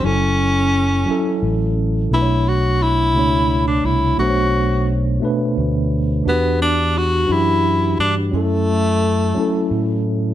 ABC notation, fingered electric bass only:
X:1
M:6/8
L:1/8
Q:3/8=58
K:Bm
V:1 name="Fingered electric bass" clef=bass
F,,,3 z A,,,2 | B,,,3 C,,2 =C,, | B,,,3 z D,,2 | E,,3 F,,2 G,, |
F,,3 z A,,2 |]